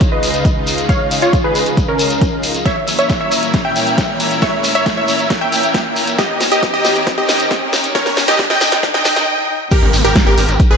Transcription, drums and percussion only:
0.01 kick, closed hi-hat, shekere
0.23 open hi-hat, shekere
0.34 closed hi-hat, shekere
0.45 kick, closed hi-hat, shekere
0.67 open hi-hat, shekere
0.78 closed hi-hat, shekere
0.89 kick, closed hi-hat, shekere
1.11 open hi-hat, shekere
1.22 closed hi-hat, shekere
1.33 kick, closed hi-hat, shekere
1.55 open hi-hat, shekere
1.66 closed hi-hat, shekere
1.77 kick, closed hi-hat, shekere
1.99 open hi-hat, shekere
2.10 closed hi-hat, shekere
2.21 kick, closed hi-hat, shekere
2.43 open hi-hat, shekere
2.54 closed hi-hat, shekere
2.66 kick, snare, closed hi-hat
2.88 open hi-hat, shekere
2.99 closed hi-hat, shekere
3.09 kick, snare, closed hi-hat, shekere
3.32 open hi-hat, shekere
3.43 closed hi-hat, shekere
3.53 kick, snare, closed hi-hat, shekere
3.76 open hi-hat, shekere
3.87 closed hi-hat, shekere
3.98 kick, snare, closed hi-hat, shekere
4.20 open hi-hat, shekere
4.31 closed hi-hat, shekere
4.42 kick, snare, closed hi-hat, shekere
4.64 open hi-hat, shekere
4.74 closed hi-hat, shekere
4.86 kick, snare, closed hi-hat, shekere
5.08 open hi-hat, shekere
5.19 closed hi-hat, shekere
5.30 kick, snare, closed hi-hat, shekere
5.52 open hi-hat, shekere
5.63 closed hi-hat, shekere
5.74 kick, snare, closed hi-hat, shekere
5.96 open hi-hat, shekere
6.07 closed hi-hat, shekere
6.18 kick, snare, closed hi-hat, shekere
6.41 snare, open hi-hat, shekere
6.52 closed hi-hat, shekere
6.63 kick, snare, closed hi-hat, shekere
6.84 snare, open hi-hat, shekere
6.95 closed hi-hat, shekere
7.07 kick, snare, closed hi-hat, shekere
7.28 snare, open hi-hat, shekere
7.40 closed hi-hat, shekere
7.51 kick, snare, closed hi-hat, shekere
7.73 snare, open hi-hat, shekere
7.84 closed hi-hat, shekere
7.95 kick, snare, closed hi-hat
8.06 snare, open hi-hat
8.17 snare, open hi-hat, shekere
8.28 snare, closed hi-hat, shekere
8.39 kick, snare, closed hi-hat, shekere
8.50 snare
8.61 snare, open hi-hat, shekere
8.72 snare, closed hi-hat, shekere
8.83 kick, snare, closed hi-hat, shekere
8.94 snare
9.05 kick, snare, open hi-hat, shekere
9.16 snare, closed hi-hat, shekere
9.71 kick, closed hi-hat, crash, shekere
9.94 open hi-hat, shekere
10.05 closed hi-hat, shekere
10.16 kick, snare, closed hi-hat, shekere
10.37 open hi-hat, shekere
10.49 closed hi-hat, shekere
10.59 kick, closed hi-hat, shekere

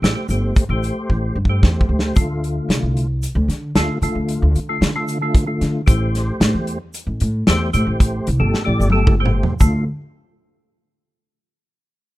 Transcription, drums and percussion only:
0.04 snare, closed hi-hat
0.29 closed hi-hat, shaker
0.56 kick, closed hi-hat, shaker
0.83 closed hi-hat, shaker
1.10 kick
1.45 kick
1.63 kick, snare
1.81 kick
1.99 snare
2.16 kick, closed hi-hat, shaker
2.44 closed hi-hat
2.70 snare, closed hi-hat
2.97 closed hi-hat
3.23 closed hi-hat, shaker
3.50 snare, closed hi-hat
3.75 snare, closed hi-hat
4.02 closed hi-hat, shaker
4.28 closed hi-hat, shaker
4.55 closed hi-hat, shaker
4.82 snare, closed hi-hat
5.08 closed hi-hat, shaker
5.35 kick, closed hi-hat
5.61 snare, closed hi-hat
5.88 kick, closed hi-hat, shaker
6.15 snare, closed hi-hat
6.41 snare, closed hi-hat
6.67 closed hi-hat
6.94 closed hi-hat, shaker
7.20 closed hi-hat
7.47 snare, closed hi-hat
7.74 closed hi-hat, shaker
8.00 kick, closed hi-hat, shaker
8.27 closed hi-hat, shaker
8.54 snare
8.81 shaker
8.90 high tom
9.07 kick, mid tom
9.25 mid tom
9.43 floor tom
9.60 kick, shaker

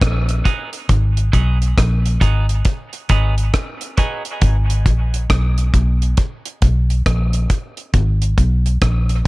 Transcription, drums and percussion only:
0.02 kick, cross-stick, closed hi-hat
0.29 closed hi-hat
0.45 kick, closed hi-hat
0.73 closed hi-hat
0.89 kick, closed hi-hat
1.17 closed hi-hat
1.33 kick, closed hi-hat
1.62 closed hi-hat
1.78 kick, cross-stick, closed hi-hat
2.06 closed hi-hat
2.21 kick, closed hi-hat
2.49 closed hi-hat
2.65 kick, closed hi-hat
2.93 closed hi-hat
3.09 kick, closed hi-hat
3.38 closed hi-hat
3.54 kick, cross-stick, closed hi-hat
3.81 closed hi-hat
3.97 kick, closed hi-hat
4.25 closed hi-hat
4.42 kick, closed hi-hat
4.70 closed hi-hat
4.86 kick, closed hi-hat
5.14 closed hi-hat
5.30 kick, cross-stick, closed hi-hat
5.58 closed hi-hat
5.74 kick, closed hi-hat
6.02 closed hi-hat
6.17 kick, closed hi-hat
6.46 closed hi-hat
6.62 kick, closed hi-hat
6.90 closed hi-hat
7.06 kick, cross-stick, closed hi-hat
7.33 closed hi-hat
7.50 kick, closed hi-hat
7.77 closed hi-hat
7.94 kick, closed hi-hat
8.22 closed hi-hat
8.38 kick, closed hi-hat
8.66 closed hi-hat
8.82 kick, cross-stick, closed hi-hat
9.09 closed hi-hat

